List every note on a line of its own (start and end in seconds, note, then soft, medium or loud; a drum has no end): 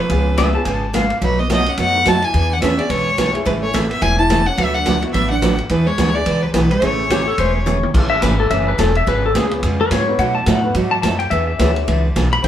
0.00 0.54 F3 medium
0.00 0.54 B4 medium
0.08 0.54 C#2 loud
0.08 0.29 C#3 medium
0.08 0.29 G#3 soft
0.08 0.50 B3 medium
0.08 0.29 B3 soft
0.08 0.51 C#4 medium
0.08 0.51 F4 medium
0.08 0.29 F4 medium
0.08 0.29 G#4 medium
0.08 0.51 G#4 medium
0.08 kick soft
0.08 ride medium
0.37 0.48 C#3 medium
0.37 0.48 G#3 medium
0.37 0.48 B3 medium
0.37 0.49 F4 medium
0.37 0.48 G#4 medium
0.37 0.54 E5 medium
0.37 kick soft
0.37 snare medium
0.37 hi-hat pedal medium
0.37 ride medium
0.52 0.64 B3 medium
0.52 0.64 C#4 medium
0.52 0.64 F4 medium
0.52 0.65 G#4 medium
0.52 0.65 A5 medium
0.65 1.10 G#1 medium
0.65 0.85 C#3 medium
0.65 0.85 G#3 medium
0.65 0.85 B3 medium
0.65 0.85 F4 medium
0.65 0.85 G#4 medium
0.65 0.93 A5 medium
0.65 kick soft
0.65 ride medium
0.93 1.04 C#3 medium
0.93 1.04 G#3 medium
0.93 1.05 B3 medium
0.93 1.05 F4 medium
0.93 1.05 G#4 medium
0.93 1.16 F5 medium
0.93 kick soft
0.93 snare medium
0.93 hi-hat pedal medium
0.93 ride medium
1.10 ride soft
1.21 1.67 B1 medium
1.21 1.41 B2 medium
1.21 1.41 F#3 medium
1.21 1.38 F#3 medium
1.21 1.41 A3 medium
1.21 1.41 D#4 medium
1.21 1.41 F#4 medium
1.21 1.41 B4 medium
1.21 kick soft
1.21 ride medium
1.39 1.50 B3 medium
1.39 1.50 D#5 medium
1.50 1.60 B2 medium
1.50 1.61 F#3 medium
1.50 1.61 A3 medium
1.50 1.68 B3 medium
1.50 1.61 D#4 medium
1.50 1.61 F#4 medium
1.50 1.70 D#5 medium
1.50 kick soft
1.50 snare medium
1.50 hi-hat pedal soft
1.50 ride medium
1.66 1.79 C#4 medium
1.66 1.79 F#5 medium
1.66 ride soft
1.77 2.23 F#2 medium
1.77 1.97 B2 medium
1.77 1.97 F#3 medium
1.77 1.97 A3 medium
1.77 2.08 B3 medium
1.77 1.97 D#4 medium
1.77 1.97 F#4 medium
1.77 2.10 F#5 loud
1.77 kick soft
1.77 ride medium
1.93 2.04 B3 medium
1.93 2.05 D#4 medium
1.93 2.05 F#4 medium
1.93 2.05 A4 medium
2.06 2.17 B2 medium
2.06 2.17 F#3 medium
2.06 2.17 A3 medium
2.06 2.17 D#4 medium
2.06 2.25 D#4 medium
2.06 2.17 F#4 medium
2.06 2.26 A5 loud
2.06 kick soft
2.06 snare medium
2.06 hi-hat pedal medium
2.06 ride medium
2.22 2.53 E4 medium
2.22 2.55 G#5 loud
2.22 ride soft
2.34 2.79 E2 medium
2.34 2.53 E3 medium
2.34 2.53 B3 medium
2.34 2.53 D4 medium
2.34 2.53 G#4 medium
2.34 kick soft
2.34 ride medium
2.53 2.63 D4 medium
2.53 2.62 F#5 medium
2.62 2.72 E3 medium
2.62 2.73 B3 medium
2.62 2.80 C#4 medium
2.62 2.73 D4 medium
2.62 2.73 G#4 medium
2.62 2.80 E5 medium
2.62 kick soft
2.62 snare medium
2.62 hi-hat pedal medium
2.62 ride medium
2.76 2.91 B3 medium
2.76 2.88 C#4 medium
2.76 2.88 D4 medium
2.76 2.88 F#4 medium
2.76 2.89 G#4 medium
2.76 2.91 D5 medium
2.76 ride soft
2.89 3.35 B1 medium
2.89 3.09 E3 soft
2.89 3.35 G#3 medium
2.89 3.09 B3 medium
2.89 3.09 D4 medium
2.89 3.09 G#4 medium
2.89 3.34 C#5 loud
2.89 kick soft
2.89 ride medium
3.18 3.28 E3 medium
3.18 3.29 B3 medium
3.18 3.29 D4 medium
3.18 3.29 G#4 medium
3.18 kick soft
3.18 snare medium
3.18 hi-hat pedal medium
3.18 ride medium
3.33 3.71 A3 medium
3.33 3.71 C#4 medium
3.33 3.71 E4 medium
3.33 3.72 G#4 medium
3.33 ride soft
3.45 3.91 A1 medium
3.45 3.65 C#3 medium
3.45 3.65 E3 medium
3.45 3.52 G#3 medium
3.45 3.65 A3 medium
3.45 3.65 C#4 medium
3.45 3.65 G#4 medium
3.45 3.53 B4 medium
3.45 kick soft
3.45 ride medium
3.63 3.73 A3 medium
3.63 3.76 C#5 medium
3.73 3.84 C#3 medium
3.73 3.84 E3 medium
3.73 3.84 A3 medium
3.73 3.91 A3 medium
3.73 3.84 C#4 medium
3.73 3.85 G#4 medium
3.73 3.90 E5 medium
3.73 kick soft
3.73 snare medium
3.73 hi-hat pedal soft
3.73 ride medium
3.90 4.02 B3 medium
3.90 4.03 E5 medium
3.90 ride soft
4.01 4.47 E1 medium
4.01 4.21 C#3 medium
4.01 4.21 E3 medium
4.01 4.21 A3 medium
4.01 4.21 C#4 medium
4.01 4.18 E4 medium
4.01 4.21 G#4 medium
4.01 4.18 G#5 loud
4.01 kick soft
4.01 ride medium
4.18 4.48 E4 medium
4.18 4.48 A5 loud
4.29 4.40 C#3 medium
4.29 4.40 E3 medium
4.29 4.41 A3 medium
4.29 4.41 C#4 medium
4.29 4.41 G#4 medium
4.29 kick soft
4.29 snare medium
4.29 hi-hat pedal medium
4.29 ride medium
4.46 4.58 C#4 medium
4.46 4.59 F#5 medium
4.57 5.03 D2 medium
4.57 4.77 D3 medium
4.57 4.77 F#3 medium
4.57 4.77 A3 medium
4.57 4.75 B3 medium
4.57 4.77 D4 medium
4.57 4.77 F#4 medium
4.57 4.77 B4 medium
4.57 4.76 E5 loud
4.57 kick soft
4.57 ride medium
4.75 5.03 D4 medium
4.75 5.03 F#5 loud
4.86 4.97 D3 medium
4.86 4.97 F#3 medium
4.86 4.97 A3 medium
4.86 4.97 D4 medium
4.86 4.97 F#4 medium
4.86 4.97 B4 medium
4.86 kick soft
4.86 snare medium
4.86 hi-hat pedal medium
4.86 ride medium
5.01 5.12 B3 medium
5.01 5.13 D4 medium
5.01 5.13 E4 medium
5.01 5.13 F#4 medium
5.01 ride soft
5.13 5.59 A1 medium
5.13 5.33 D3 medium
5.13 5.33 F#3 medium
5.13 5.33 A3 medium
5.13 5.30 B3 medium
5.13 5.33 D4 medium
5.13 5.34 F#4 medium
5.13 5.34 B4 medium
5.13 5.29 E5 loud
5.13 kick soft
5.13 ride medium
5.30 5.57 D4 medium
5.30 5.57 F#5 medium
5.42 5.53 D3 medium
5.42 5.53 F#3 medium
5.42 5.53 A3 medium
5.42 5.53 D4 medium
5.42 5.53 F#4 medium
5.42 5.53 B4 medium
5.42 kick soft
5.42 snare medium
5.42 hi-hat pedal medium
5.42 ride medium
5.59 ride soft
5.69 5.92 E2 loud
5.69 5.89 E3 medium
5.69 5.87 E3 medium
5.69 5.89 B3 medium
5.69 5.89 D4 medium
5.69 5.90 G#4 medium
5.69 5.88 B4 medium
5.69 kick soft
5.69 ride medium
5.87 6.15 G#3 medium
5.87 6.16 C#5 medium
5.98 6.22 D2 medium
5.98 6.09 E3 medium
5.98 6.09 B3 medium
5.98 6.09 D4 medium
5.98 6.09 G#4 medium
5.98 kick soft
5.98 snare medium
5.98 hi-hat pedal medium
5.98 ride medium
6.13 6.24 B3 medium
6.13 6.43 B3 medium
6.13 6.24 D4 medium
6.13 6.25 E4 medium
6.13 6.25 G#4 medium
6.13 6.44 D5 medium
6.26 6.50 C#2 medium
6.26 6.45 E3 medium
6.26 6.45 B3 medium
6.26 6.45 D4 medium
6.26 6.46 G#4 medium
6.26 kick soft
6.26 ride medium
6.42 6.54 F#3 medium
6.42 6.53 B4 medium
6.54 6.78 B1 medium
6.54 6.65 E3 medium
6.54 6.71 E3 medium
6.54 6.65 B3 medium
6.54 6.65 D4 medium
6.54 6.65 G#4 medium
6.54 6.73 B4 medium
6.54 kick soft
6.54 snare medium
6.54 hi-hat pedal medium
6.54 ride medium
6.71 7.66 A3 medium
6.71 7.67 C#5 medium
6.71 ride soft
6.80 7.27 A1 medium
6.80 7.01 C#3 medium
6.80 7.01 E3 medium
6.80 7.23 A3 medium
6.80 7.01 A3 medium
6.80 7.23 C#4 medium
6.80 7.02 C#4 medium
6.80 7.23 E4 medium
6.80 7.23 G#4 medium
6.80 7.02 G#4 medium
6.80 kick soft
6.80 ride medium
7.10 7.21 C#3 medium
7.10 7.21 E3 medium
7.10 7.21 A3 medium
7.10 7.22 C#4 medium
7.10 7.27 G4 medium
7.10 7.22 G#4 medium
7.10 kick soft
7.10 snare medium
7.10 hi-hat pedal soft
7.10 ride medium
7.28 7.39 A4 medium
7.38 7.83 E1 medium
7.38 7.57 C#3 medium
7.38 7.57 E3 medium
7.38 7.58 A3 medium
7.38 7.58 C#4 medium
7.38 7.58 G#4 medium
7.38 7.55 C5 medium
7.38 kick soft
7.38 ride medium
7.56 7.88 C#5 medium
7.66 7.77 C#3 medium
7.66 7.77 E3 medium
7.66 7.77 A3 medium
7.66 7.77 C#4 medium
7.66 7.77 G#4 medium
7.66 hi-hat pedal medium
7.66 high tom soft
7.83 high tom medium
7.93 8.22 A1 medium
7.93 8.14 C#3 soft
7.93 8.14 E3 medium
7.93 8.71 A3 medium
7.93 8.14 A3 medium
7.93 8.72 C#4 medium
7.93 8.14 C#4 medium
7.93 8.72 E4 medium
7.93 8.72 G#4 medium
7.93 8.14 G#4 medium
7.93 8.72 A4 medium
7.93 kick medium
7.93 crash medium
8.10 8.22 E5 medium
8.22 8.50 G#1 medium
8.22 8.33 C#3 medium
8.22 8.33 E3 medium
8.22 8.33 A3 medium
8.22 8.33 C#4 medium
8.22 8.34 G#4 medium
8.22 8.39 B4 medium
8.22 kick soft
8.22 snare medium
8.22 hi-hat pedal medium
8.22 ride medium
8.40 8.51 A4 medium
8.50 8.78 F#1 medium
8.50 8.70 C#3 medium
8.50 8.70 E3 soft
8.50 8.70 A3 medium
8.50 8.70 C#4 medium
8.50 8.70 G#4 medium
8.50 8.67 E5 medium
8.50 kick soft
8.50 ride medium
8.68 8.79 B4 medium
8.78 9.06 E1 medium
8.78 8.89 C#3 medium
8.78 8.89 E3 medium
8.78 8.89 A3 medium
8.78 8.89 C#4 medium
8.78 8.90 G#4 medium
8.78 8.95 A4 medium
8.78 kick soft
8.78 snare medium
8.78 hi-hat pedal medium
8.78 ride medium
8.95 9.07 E5 medium
8.95 ride soft
9.07 9.34 G#1 medium
9.07 9.26 C#3 medium
9.07 9.26 G#3 medium
9.07 9.26 B3 medium
9.07 9.26 F4 medium
9.07 9.26 G#4 medium
9.07 9.24 B4 medium
9.07 kick soft
9.07 ride medium
9.26 9.36 A4 medium
9.35 9.62 C#2 medium
9.35 9.46 C#3 medium
9.35 9.46 G#3 medium
9.35 9.46 B3 medium
9.35 9.46 F4 medium
9.35 9.46 G#4 medium
9.35 9.52 G#4 medium
9.35 kick soft
9.35 snare medium
9.35 hi-hat pedal medium
9.35 ride medium
9.50 9.61 B3 medium
9.50 9.61 C#4 medium
9.50 9.62 F4 medium
9.50 9.62 G#4 medium
9.50 9.62 B4 medium
9.50 ride soft
9.63 9.90 F2 medium
9.63 9.82 C#3 medium
9.63 9.82 G#3 medium
9.63 9.83 B3 medium
9.63 9.83 F4 medium
9.63 9.83 G#4 medium
9.63 kick soft
9.63 ride medium
9.81 9.91 B4 medium
9.91 10.18 G#2 medium
9.91 10.02 C#3 medium
9.91 10.02 G#3 medium
9.91 10.02 B3 medium
9.91 10.02 F4 medium
9.91 10.02 G#4 medium
9.91 10.19 C#5 loud
9.91 kick soft
9.91 snare medium
9.91 hi-hat pedal medium
9.91 ride medium
10.07 10.44 B3 medium
10.07 10.45 D#4 medium
10.07 10.45 F#4 medium
10.07 10.45 A4 medium
10.07 10.46 B4 medium
10.19 10.46 B2 medium
10.19 10.38 B2 medium
10.19 10.38 F#3 medium
10.19 10.38 A3 medium
10.19 10.38 D#4 medium
10.19 10.39 F#4 medium
10.19 10.35 F#5 medium
10.19 kick soft
10.19 ride medium
10.35 10.46 A5 medium
10.46 10.74 A2 medium
10.46 10.58 B2 medium
10.46 10.58 F#3 medium
10.46 10.58 A3 medium
10.46 10.58 D#4 medium
10.46 10.58 F#4 medium
10.46 10.75 F#5 medium
10.46 kick soft
10.46 snare medium
10.46 hi-hat pedal medium
10.46 ride medium
10.62 10.73 B3 medium
10.62 10.73 D#4 medium
10.62 10.74 F#4 medium
10.62 10.74 A4 medium
10.62 10.74 B4 medium
10.75 11.02 G#2 medium
10.75 10.94 B2 medium
10.75 10.94 F#3 medium
10.75 10.94 A3 medium
10.75 10.95 D#4 medium
10.75 10.95 F#4 medium
10.75 kick soft
10.75 ride medium
10.91 11.01 A5 loud
11.02 11.30 F#2 medium
11.02 11.14 B2 medium
11.02 11.14 F#3 medium
11.02 11.14 A3 medium
11.02 11.14 D#4 medium
11.02 11.14 F#4 medium
11.02 11.19 A5 medium
11.02 kick soft
11.02 snare medium
11.02 hi-hat pedal medium
11.02 ride medium
11.19 11.31 G5 medium
11.19 ride soft
11.30 11.59 E2 medium
11.30 11.50 E3 medium
11.30 11.51 B3 medium
11.30 11.51 D4 medium
11.30 11.51 G#4 medium
11.30 11.46 E5 medium
11.30 kick soft
11.30 ride medium
11.47 12.02 E5 medium
11.58 11.87 D2 medium
11.58 11.70 E3 medium
11.58 11.70 B3 medium
11.58 12.00 D4 medium
11.58 11.70 D4 medium
11.58 12.00 E4 medium
11.58 12.01 F#4 medium
11.58 12.01 G#4 medium
11.58 11.70 G#4 medium
11.58 12.01 C#5 medium
11.58 kick soft
11.58 snare medium
11.58 hi-hat pedal soft
11.58 ride medium
11.76 ride soft
11.88 12.15 C#2 medium
11.88 12.07 E3 medium
11.88 12.07 B3 medium
11.88 12.07 D4 medium
11.88 12.07 G#4 medium
11.88 kick soft
11.88 ride medium
12.16 12.43 B1 medium
12.16 12.26 E3 medium
12.16 12.26 B3 medium
12.16 12.27 D4 medium
12.16 12.27 G#4 medium
12.16 kick soft
12.16 snare medium
12.16 hi-hat pedal medium
12.16 ride medium
12.33 12.44 B5 medium
12.33 ride soft
12.43 12.48 A1 medium
12.43 12.48 C#3 soft
12.43 12.48 E3 medium
12.43 12.48 A3 medium
12.43 12.48 C4 medium
12.43 12.48 C#4 medium
12.43 12.48 D#4 medium
12.43 12.48 G4 medium
12.43 12.48 G#4 medium
12.43 12.48 C5 medium
12.43 12.48 A5 loud
12.43 kick soft
12.43 ride medium